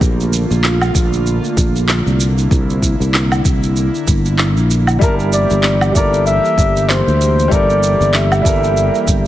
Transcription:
0.00 0.44 A#1 loud
0.00 4.98 D3 medium
0.00 2.16 A3 medium
0.00 2.16 A#3 medium
0.00 2.19 F4 medium
0.00 kick loud
0.00 shaker soft
0.20 shaker soft
0.33 shaker medium
0.51 0.90 A#1 medium
0.51 shaker soft
0.64 clap medium
0.64 shaker soft
0.81 low woodblock medium
0.81 shaker soft
0.95 1.38 A#1 medium
0.95 kick loud
0.95 shaker medium
1.13 shaker soft
1.26 shaker soft
1.44 shaker soft
1.57 2.00 A#1 medium
1.57 kick loud
1.57 shaker medium
1.76 shaker soft
1.89 clap loud
1.89 shaker soft
2.06 2.46 C2 medium
2.06 shaker soft
2.20 9.27 A#3 medium
2.20 4.99 E4 medium
2.20 shaker medium
2.38 shaker soft
2.51 2.94 C2 loud
2.51 kick loud
2.51 shaker soft
2.70 shaker soft
2.82 kick medium
2.82 shaker medium
3.00 3.40 C2 medium
3.00 shaker soft
3.14 clap medium
3.14 shaker soft
3.32 low woodblock medium
3.32 shaker soft
3.45 3.88 C2 medium
3.45 kick loud
3.45 shaker medium
3.63 shaker soft
3.76 shaker soft
3.95 shaker soft
4.07 4.57 G1 medium
4.07 kick loud
4.07 shaker medium
4.25 shaker soft
4.38 clap medium
4.38 shaker soft
4.57 4.97 A#1 medium
4.57 shaker soft
4.71 shaker medium
4.87 low woodblock medium
4.87 shaker soft
4.99 5.44 G1 medium
4.99 9.27 E3 medium
4.99 5.90 G3 medium
4.99 5.92 E4 medium
4.99 9.27 G4 medium
4.99 5.16 A#4 medium
4.99 5.93 A5 medium
4.99 kick loud
4.99 shaker soft
5.05 5.94 A#4 loud
5.20 shaker soft
5.33 5.91 D5 medium
5.33 shaker medium
5.50 5.91 G1 medium
5.50 shaker soft
5.63 clap medium
5.63 shaker soft
5.81 low woodblock medium
5.81 shaker soft
5.92 6.38 G1 medium
5.92 7.47 G3 medium
5.92 7.48 E4 medium
5.92 7.49 A4 medium
5.92 6.25 D5 loud
5.92 kick loud
5.92 shaker medium
5.98 7.49 A#4 loud
6.14 shaker soft
6.26 6.91 E5 loud
6.26 shaker soft
6.45 shaker soft
6.58 7.00 G1 loud
6.58 kick loud
6.58 shaker medium
6.76 shaker soft
6.90 7.54 C5 medium
6.90 clap loud
6.90 shaker soft
7.07 7.47 D2 medium
7.07 shaker soft
7.21 shaker medium
7.39 shaker soft
7.48 7.94 G1 medium
7.48 8.40 G3 medium
7.48 8.41 E4 medium
7.48 8.42 A4 medium
7.48 kick loud
7.48 shaker soft
7.52 8.43 A#4 loud
7.52 8.16 D5 loud
7.70 shaker soft
7.83 shaker medium
8.00 8.40 G1 medium
8.00 shaker soft
8.14 9.27 E5 medium
8.14 clap medium
8.14 shaker soft
8.32 low woodblock medium
8.32 shaker soft
8.42 8.88 G1 medium
8.42 9.27 G3 medium
8.42 9.27 E4 medium
8.42 9.27 A4 medium
8.42 kick loud
8.46 9.27 A#4 loud
8.46 shaker medium
8.64 shaker soft
8.77 shaker soft
8.95 shaker soft
9.07 9.27 G1 medium
9.07 kick medium
9.07 shaker medium

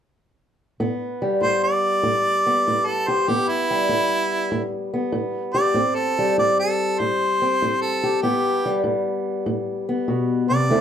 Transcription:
0.80 1.38 A2 medium
0.80 2.46 B3 medium
1.22 3.70 G3 medium
1.41 1.99 A2 medium
1.41 1.62 C5 medium
1.64 2.88 D5 medium
2.03 2.61 A2 medium
2.46 3.28 B3 medium
2.67 3.24 A2 medium
2.87 3.09 A4 medium
3.08 3.31 G4 medium
3.08 3.30 C5 medium
3.28 3.86 A2 medium
3.28 4.93 B3 medium
3.28 3.50 G4 medium
3.48 4.68 E4 loud
3.70 6.18 G3 medium
3.89 4.47 A2 medium
4.52 5.09 A2 medium
4.94 5.75 B3 medium
5.12 5.71 A2 medium
5.54 5.77 G4 medium
5.54 5.97 D5 loud
5.74 6.33 A2 medium
5.74 7.41 C4 medium
5.96 6.36 A4 medium
6.19 8.64 G3 medium
6.38 6.95 A2 medium
6.38 6.58 D5 medium
6.59 7.00 A4 medium
6.99 7.57 A2 medium
6.99 7.82 C5 medium
7.42 8.23 C4 medium
7.62 8.19 A2 medium
7.81 8.21 A4 medium
8.03 8.21 G4 medium
8.22 8.81 A2 medium
8.22 9.88 B3 medium
8.22 8.82 G4 medium
8.66 10.70 G3 medium
8.84 9.42 A2 medium
9.46 10.04 A2 medium
9.89 10.70 B3 medium
10.08 10.49 B2 medium
10.50 10.70 C3 medium
10.50 10.81 D5 medium
10.70 10.81 D3 medium
10.70 10.81 A3 medium
10.70 10.81 C4 medium
10.70 10.81 E4 medium

